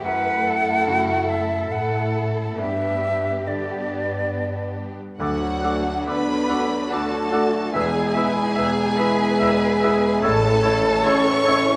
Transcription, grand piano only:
0.05 F#2
0.87 C#3
2.58 G2
3.47 D3
5.19 D2 D3
5.64 D4 F#4 A4
6.06 D2 D3
6.49 D4 F#4 A4
6.92 D2 D3
7.33 D4 F#4 A4
7.75 E1 E2
8.16 B3 E4 G#4
8.59 E1 E2
8.99 B3 E4 G#4
9.41 E1 E2
9.84 B3 E4 G#4
10.25 A1 A2
10.65 A3 E4 C#5
11.06 A1 A2
11.48 A3 E4 C#5

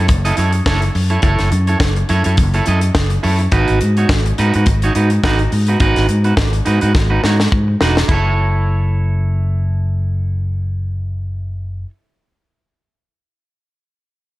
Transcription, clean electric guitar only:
0.09 muted clean electric guitar stroke
0.25 E4 A4 D#5
0.37 E4 A4 C#5
0.54 muted clean electric guitar stroke
0.66 E4 A4 C#5
0.83 muted clean electric guitar stroke
0.95 muted clean electric guitar stroke
1.10 E4 A4 C#5
1.23 E4 A4 C#5
1.52 muted clean electric guitar stroke
1.68 E4 A4 C#5
1.80 muted clean electric guitar stroke
1.97 muted clean electric guitar stroke
2.09 E4 A4 C#5
2.25 E4 A4 C#5
2.54 E4 A4 C#5
2.67 E4 A4 D#5
2.83 muted clean electric guitar stroke
3.11 muted clean electric guitar stroke
3.23 E4 A4 C#5
3.40 muted clean electric guitar stroke
3.52 D#4 F#4 B4
3.81 muted clean electric guitar stroke
3.98 D#4 F#4 C#5
4.11 muted clean electric guitar stroke
4.26 muted clean electric guitar stroke
4.38 D#4 F#4 B4
4.55 D#4 F#4 B4
4.68 muted clean electric guitar stroke
4.84 D#4 F#4 C#5
4.95 D#4 F#4 B4
5.11 muted clean electric guitar stroke
5.24 D#4 F#4 B4
5.41 muted clean electric guitar stroke
5.52 muted clean electric guitar stroke
5.68 D#4 F#4 B4
5.81 D#4 F#4 B4
6.09 muted clean electric guitar stroke
6.25 D#4 F#4 B4
6.36 muted clean electric guitar stroke
6.52 muted clean electric guitar stroke
6.65 D#4 F#4 B4
6.82 D#4 F#4 B4
6.95 muted clean electric guitar stroke
7.10 D#4 F#4 B4
7.23 D#4 F#4 C#5
7.39 muted clean electric guitar stroke
7.68 muted clean electric guitar stroke
7.81 D#4 F#4 B4
7.98 muted clean electric guitar stroke
8.08 E4 A4
8.14 C#5

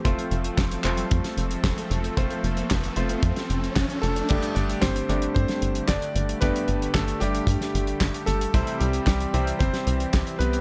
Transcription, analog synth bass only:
0.05 F1
0.31 F1
0.58 F1
0.84 F1
1.12 F2
1.37 F1
1.64 F1
1.90 F1
2.17 F1
2.43 F1
2.71 F1
2.97 F1
3.23 F2
3.50 F1
3.76 F1
4.03 F1
4.31 G1
4.56 G1
4.82 G1
5.09 G1
5.36 G2
5.62 G1
5.89 G1
6.15 G1
6.42 G1
6.68 G1
6.94 G1
7.21 G1
7.47 G2
7.75 G1
8.01 G1
8.28 G1
8.54 C2
8.81 C2
9.07 C2
9.34 C2
9.61 G1
9.87 C2
10.14 C2
10.40 C2

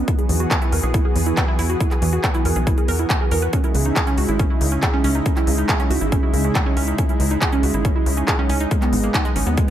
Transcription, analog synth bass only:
0.30 E2
0.73 E2
0.83 B1
1.16 E2
1.59 E2
2.02 E2
2.45 E2
2.56 B1
2.88 E2
3.32 E2
3.75 C#2
4.18 C#2
4.29 G#1
4.61 C#2
5.04 C#2
5.47 C#2
5.91 C#2
6.01 G#1
6.34 C#2
6.77 C#2
7.20 C#2
7.63 C#2
7.74 G#1
8.06 C#2
8.50 C#2
8.93 G#1
9.36 G#1
9.47 D#2

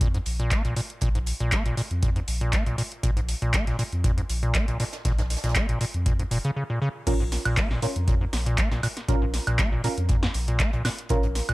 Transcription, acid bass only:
0.01 A#2
0.14 G#2
0.40 A#2
0.51 A#3
0.65 A#2
0.77 A#2
1.02 A#2
1.15 G#2
1.40 A#2
1.52 A#3
1.66 A#2
1.77 A#2
2.03 A#2
2.16 G#2
2.41 A#2
2.53 A#3
2.66 A#2
2.78 A#2
3.03 A#2
3.17 G#2
3.42 A#2
3.54 A#3
3.67 A#2
3.79 A#2
4.04 A#2
4.18 G#2
4.43 A#2
4.55 A#3
4.68 A#2
4.80 A#2
5.05 A#2
5.19 G#2
5.44 A#2
5.56 A#3
5.69 A#2
5.81 A#2
6.06 A#2
6.19 G#2
6.31 A#2
6.45 C#3
6.56 C#3
6.70 A#2
6.82 C#3
7.07 A#2
7.20 G#2
7.45 A#2
7.57 A#3
7.71 A#2
7.82 A#2
8.08 A#2
8.21 G#2
8.46 A#2
8.58 A#3
8.71 A#2
8.83 A#2
9.08 A#2
9.22 G#2
9.47 A#2
9.59 A#3
9.72 A#2
9.84 A#2
10.09 A#2
10.23 G#2
10.48 A#2
10.60 A#3
10.73 A#2
10.85 A#2
11.10 A#2
11.24 G#2
11.49 A#2

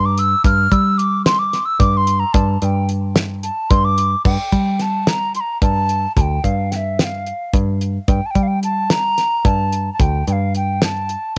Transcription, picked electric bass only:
Already playing: G2
0.45 G2
0.72 G3
1.80 G2
2.35 G2
2.62 G2
3.71 G2
4.25 G2
4.52 G3
5.62 G2
6.17 D2
6.44 G2
7.54 G2
8.08 G2
8.35 G3
9.45 G2
10.00 D2
10.27 G2

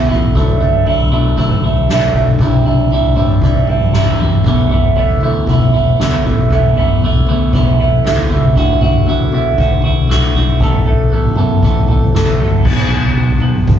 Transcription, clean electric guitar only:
Already playing: E2 B2 E3
0.09 E3 A3 B3 E4
0.35 D3 F#3 A3 D4 E4
0.60 A3 D4 E4
0.85 F#3 A3 D4 E4
1.12 D3 F#3 A3 D4 E4
1.37 F#3 A3 D4 E4
1.64 A3 D4 E4
1.90 D3 F#3 A3 D4 E4
2.15 A3 D4 E4
2.41 C3 E3 G3 D4 E4
2.66 G3 D4 E4
2.92 E3 G3 D4 E4
3.16 C3 E3 G3 D4 E4
3.42 E3 G3 D4 E4
3.69 G3 D4 E4
3.93 C3 E3 G3 D4 E4
4.20 G3 D4 E4
4.45 E2 B2 E3 A3 B3 E4
4.71 E3 A3 B3 E4
4.96 E3 A3 B3 E4
5.23 E2 B2 E3 A3 B3 E4
5.48 E3 A3 B3 E4
5.74 E3 A3 B3 E4
6.00 E2 B2 E3 A3 B3 E4
6.25 E3 A3 B3 E4
6.51 E2 B2 E3 A3 B3 E4
6.77 E3 A3 B3 E4
7.04 E3 A3 B3 E4
7.29 E2 B2 E3 A3 B3 E4
7.54 E3 A3 B3 E4
7.80 E3 A3 B3 E4
8.05 E2 B2 E3 A3 B3 E4
8.30 E3 A3 B3 E4
8.56 D3 A3 E4 F#4
8.81 A3 E4 F#4
9.06 D3 A3 E4 F#4
9.33 D3 A3 E4 F#4
9.58 D3 A3 E4 F#4
9.84 A3 E4 F#4
10.09 D3 A3 E4 F#4
10.35 A3 E4 F#4
10.61 A2 E3 A3 B3 A4
10.86 A3 B3 A4
11.12 E3 A3 B3 A4
11.37 A2 E3 A3 B3 A4
11.63 E3 A3 B3 A4
11.89 A3 B3 A4
12.15 A2 E3 A3 B3 A4
12.39 A3 B3 A4
12.65 B3
13.16 F#4
13.42 B3
13.68 A2

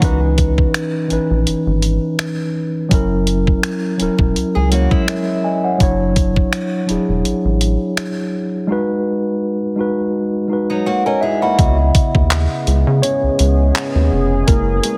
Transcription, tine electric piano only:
0.00 E3 C#4 D#4
0.04 B4
1.08 E3 C#4 D#4
1.13 B4
2.89 F#3 C#4 E4
2.94 A#4
3.97 F#3 C#4 E4
4.02 A#4
4.70 F#3 C#4 E4
4.75 C#5
5.08 A#4 E5
5.44 D#5 G#5
5.64 C#5 F#5
5.78 F#3 D4 E4
5.83 C#5
6.86 F#3 D4 E4
6.91 G#4
8.67 G#3 D#4 F#4
8.72 B4
9.76 G#3 D#4 F#4
9.81 B4
10.48 G#3 D#4 F#4
10.53 B4
10.86 C#5 F#5
11.06 D#5 G#5
11.21 E4 E5
11.42 F#5 B5
11.58 C#3 B3 D#5
13.02 C#4 C#5
14.47 G#3 A#3 E4 A#4
14.84 G#3 G#4

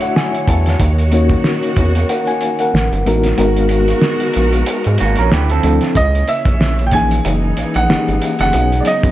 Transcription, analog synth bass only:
0.48 E2
0.80 D#2
1.77 E2
2.74 A1
2.92 G1
3.06 A1
3.39 G#1
4.37 A#1
4.87 G#2
5.01 G#1
5.19 A#1
5.33 D2
5.64 D2
5.96 C#2
6.46 A#1
7.26 F#1
7.58 A#1
7.76 A#1
7.90 G#1
8.08 G#1
8.40 F#1
8.54 B1
9.04 B1

